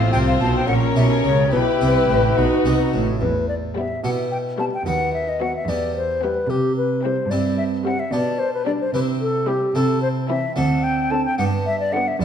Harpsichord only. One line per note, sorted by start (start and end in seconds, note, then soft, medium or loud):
0.00 0.10 A2 soft
0.13 0.38 C3 soft
0.13 0.53 C4 soft
0.13 0.53 F4 soft
0.40 0.65 B2 soft
0.68 0.93 A#2 soft
0.96 1.21 B2 soft
0.96 1.37 C#4 soft
0.96 1.37 E4 soft
0.96 1.37 G4 soft
1.24 1.50 C#3 medium
1.52 1.78 B2 soft
1.81 2.06 C3 soft
1.81 2.22 B3 soft
1.81 2.22 E4 soft
1.81 2.22 G4 soft
2.10 2.35 A2 soft
2.38 2.63 B2 soft
2.65 2.91 C3 soft
2.65 3.05 B3 soft
2.65 3.06 D#4 soft
2.65 3.06 F#4 soft
2.94 3.18 A2 soft
3.21 3.87 E2 soft
4.04 4.70 B2 soft
4.04 4.63 B3 soft
4.04 4.63 E4 soft
4.04 4.64 G4 soft
4.86 5.52 D#2 soft
4.86 5.64 B3 soft
4.86 5.64 F#4 soft
5.68 6.34 E2 soft
5.68 6.46 B3 soft
5.68 6.46 E4 soft
5.68 6.46 G4 soft
6.50 7.15 C3 soft
7.31 7.96 G2 soft
7.31 7.90 C4 soft
7.31 7.90 E4 soft
7.31 7.90 G4 soft
8.13 8.78 B2 soft
8.13 8.90 D4 soft
8.13 8.90 G4 soft
8.94 9.59 C3 soft
8.94 9.71 C4 soft
8.94 9.72 E4 soft
8.94 9.72 G4 soft
9.75 10.40 C3 soft
9.75 10.52 C4 soft
9.75 10.53 E4 soft
9.75 10.53 A4 soft
10.56 11.22 D2 soft
10.56 11.34 C4 soft
10.56 11.34 D4 soft
10.56 11.35 A4 soft
11.38 12.04 G2 soft
11.38 12.16 B3 soft
11.38 12.17 D4 soft
11.38 12.17 G4 soft
12.21 12.25 E2 soft
12.21 12.25 E4 soft